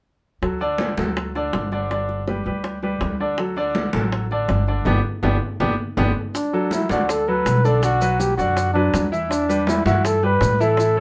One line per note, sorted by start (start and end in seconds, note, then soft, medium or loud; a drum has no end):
0.42 0.94 D2 medium
0.42 0.58 F#3 medium
0.42 0.58 F#4 medium
0.42 0.58 A4 soft
0.42 high bongo medium
0.42 high conga soft
0.60 0.91 D3 medium
0.60 0.91 D4 medium
0.60 0.91 D5 medium
0.60 high bongo soft
0.60 high conga soft
0.78 high bongo medium
0.78 high conga medium
0.98 1.49 D2 medium
0.98 1.28 F#3 medium
0.98 1.29 F#4 medium
0.98 1.29 A4 medium
0.98 high conga medium
1.16 high bongo medium
1.16 high conga soft
1.35 1.66 D3 medium
1.35 1.66 D4 medium
1.35 1.66 D5 medium
1.35 high bongo soft
1.35 high conga soft
1.53 2.40 G1 medium
1.53 high bongo medium
1.53 low bongo medium
1.53 high conga medium
1.72 1.87 D3 medium
1.72 1.88 D4 medium
1.72 1.88 D5 medium
1.72 high bongo soft
1.72 high conga soft
1.91 2.21 D3 medium
1.91 2.21 D4 medium
1.91 2.21 D5 medium
1.91 high bongo medium
1.91 high conga soft
2.09 high bongo soft
2.09 high conga soft
2.27 2.43 G3 medium
2.27 2.43 G4 medium
2.27 2.43 B4 soft
2.27 high bongo medium
2.27 high conga medium
2.46 2.98 D2 medium
2.46 2.76 G3 medium
2.46 2.77 G4 medium
2.46 2.77 B4 medium
2.46 high conga soft
2.64 high bongo medium
2.64 high conga soft
2.83 3.13 G3 medium
2.83 3.13 G4 medium
2.83 3.14 B4 medium
2.83 high bongo soft
2.83 high conga soft
3.01 3.88 D2 medium
3.01 high bongo medium
3.01 low bongo medium
3.01 high conga medium
3.20 3.35 D3 medium
3.20 3.35 D4 medium
3.20 3.36 D5 medium
3.20 high conga soft
3.38 3.54 F#3 medium
3.38 3.54 F#4 medium
3.38 3.54 A4 medium
3.38 high bongo medium
3.38 high conga soft
3.56 3.87 D3 medium
3.56 3.87 D4 medium
3.56 3.88 D5 medium
3.56 high bongo soft
3.56 high conga soft
3.75 high bongo medium
3.75 high conga medium
3.93 4.45 A1 medium
3.93 4.24 F#3 medium
3.93 4.25 F#4 medium
3.93 4.25 A4 medium
3.93 high conga medium
4.12 high bongo medium
4.12 high conga soft
4.31 4.62 D3 medium
4.31 4.62 D4 medium
4.31 4.62 D5 medium
4.31 high bongo soft
4.31 high conga soft
4.48 4.84 G1 medium
4.48 high bongo medium
4.48 low bongo medium
4.48 high conga medium
4.67 4.83 D3 medium
4.67 4.83 D4 medium
4.67 4.84 D5 medium
4.67 high bongo soft
4.67 high conga soft
4.85 5.00 G1 medium
4.85 4.98 B3 medium
4.85 4.98 D4 medium
4.85 4.99 G4 medium
4.85 low bongo medium
4.85 low conga medium
5.23 5.37 G1 medium
5.23 5.35 B3 medium
5.23 5.35 D4 medium
5.23 5.35 G4 medium
5.23 low bongo medium
5.23 low conga medium
5.60 5.74 G1 medium
5.60 5.72 B3 medium
5.60 5.72 D4 medium
5.60 5.72 G4 medium
5.60 low bongo medium
5.60 low conga medium
5.97 6.11 G1 medium
5.97 6.10 B3 medium
5.97 6.10 D4 medium
5.97 6.10 G4 medium
5.97 low bongo medium
5.97 low conga medium
6.35 6.69 D4 medium
6.35 high bongo medium
6.35 high conga soft
6.35 maracas medium
6.53 6.84 F#3 medium
6.53 6.84 F#4 medium
6.53 6.84 A4 medium
6.53 high bongo soft
6.53 high conga soft
6.71 6.90 E4 medium
6.71 high bongo medium
6.71 high conga medium
6.71 maracas medium
6.89 7.41 D2 medium
6.89 7.21 D3 medium
6.89 7.21 D4 medium
6.89 7.12 F#4 medium
6.89 7.21 D5 medium
6.89 high conga medium
6.89 maracas soft
7.09 7.30 A4 medium
7.09 high bongo medium
7.09 high conga soft
7.09 maracas medium
7.27 7.58 F#3 medium
7.27 7.58 F#4 medium
7.27 7.58 A4 medium
7.27 7.66 B4 medium
7.27 high bongo soft
7.27 high conga soft
7.45 8.32 B1 medium
7.45 high bongo medium
7.45 low bongo medium
7.45 high conga medium
7.45 maracas medium
7.64 7.80 D3 medium
7.64 7.80 D4 medium
7.64 7.83 A4 medium
7.64 7.80 D5 medium
7.64 high bongo soft
7.64 high conga soft
7.64 maracas soft
7.82 7.98 D3 medium
7.82 7.98 D4 medium
7.82 8.21 F#4 medium
7.82 7.98 D5 medium
7.82 high bongo medium
7.82 high conga soft
7.82 maracas medium
8.01 8.31 F#3 medium
8.01 8.32 F#4 medium
8.01 8.32 B4 medium
8.01 high bongo soft
8.01 high conga soft
8.01 maracas medium
8.20 8.37 G4 medium
8.20 high bongo medium
8.20 high conga medium
8.20 maracas medium
8.37 8.89 F#2 medium
8.37 8.68 D3 medium
8.37 8.69 D4 medium
8.37 8.72 F#4 medium
8.37 8.69 D5 medium
8.37 high conga soft
8.37 maracas soft
8.57 high bongo medium
8.57 high conga soft
8.57 maracas medium
8.74 9.05 F#3 medium
8.74 9.09 D4 medium
8.74 9.05 F#4 medium
8.74 9.06 B4 medium
8.74 high bongo soft
8.74 high conga soft
8.93 9.80 E2 medium
8.93 high bongo medium
8.93 low bongo medium
8.93 high conga medium
8.93 maracas medium
9.12 9.42 E3 medium
9.12 9.42 E4 medium
9.12 9.42 E5 medium
9.12 high conga soft
9.12 maracas soft
9.30 9.69 D4 medium
9.30 high bongo medium
9.30 high conga soft
9.30 maracas medium
9.49 9.79 G3 medium
9.49 9.79 G4 medium
9.49 9.80 B4 medium
9.49 high bongo soft
9.49 high conga soft
9.49 maracas medium
9.67 9.85 E4 medium
9.67 high bongo medium
9.67 high conga medium
9.67 maracas medium
9.85 10.37 G2 medium
9.85 10.16 E3 medium
9.85 10.17 E4 medium
9.85 10.07 F#4 medium
9.85 10.17 E5 medium
9.85 high conga medium
9.85 maracas soft
10.04 10.24 A4 medium
10.04 high bongo medium
10.04 high conga soft
10.04 maracas medium
10.23 10.53 G3 medium
10.23 10.54 G4 medium
10.23 10.54 B4 medium
10.23 10.63 B4 medium
10.23 high bongo soft
10.23 high conga soft
10.41 11.00 A2 medium
10.41 high bongo medium
10.41 low bongo medium
10.41 high conga medium
10.41 maracas medium
10.59 10.75 E3 medium
10.59 10.75 E4 medium
10.59 11.00 A4 medium
10.59 10.76 E5 medium
10.59 high bongo soft
10.59 high conga soft
10.59 maracas soft
10.77 10.94 E3 medium
10.77 10.94 E4 medium
10.77 10.94 E5 medium
10.77 high bongo medium
10.77 high conga soft
10.77 maracas medium
10.96 11.00 A3 medium
10.96 high bongo soft
10.96 high conga soft